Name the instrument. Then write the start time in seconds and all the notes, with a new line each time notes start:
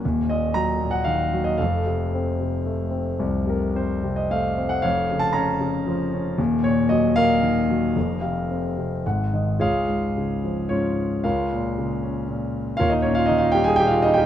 grand piano
0.05 D#1 D#2
0.29 A#2 D#5
0.54 F#3 A#5
0.81 A#2
0.91 F#5
1.04 D#3 F5
1.33 F#3
1.44 D#5
1.58 F1 F2 A4 F5
1.85 C3
2.14 C4
2.40 C3
2.65 A3
2.91 C4
3.19 C2
3.46 C3 A#4
3.75 C4 C5
4.03 C3
4.16 D#5
4.30 A3 F5
4.57 C4
4.69 F#5
4.82 F1 F2 C#5 F5
5.11 C#3
5.19 A5
5.33 C#4 C#5 A#5
5.61 C#3
5.87 F3
6.13 C#4
6.38 D#1 D#2
6.63 A#2 C#5
6.89 F#3 D#5
7.16 A#2 A#4 F5
7.42 D#3
7.70 F#3
7.96 F1 F2
8.21 C3 F5
8.50 C4
8.77 C3
9.06 G#1 G#2 F#5
9.34 D#3 D#5
9.59 C#2 F4 G#4 C#5 F5
9.88 G#2
10.17 C#3
10.44 F3
10.69 G#2 C#4 F4 C#5
11.24 C#2 F4 A#4 C#5 F5
11.53 A#2
11.78 C#3
12.03 C#4
12.28 A#2
12.77 D#1 D#2 F4 A#4 C#5 F5
12.90 D#4 D#5
13.02 A#2 C#4 C#5
13.15 F4 F5
13.26 D#4 D#5
13.30 D#3
13.38 F4 F5
13.52 G4 G5
13.56 G3
13.64 G#4 G#5
13.76 G4 G5
13.81 A#2
13.87 F5
13.91 F4
14.02 D#4 D#5
14.14 G5
14.18 G4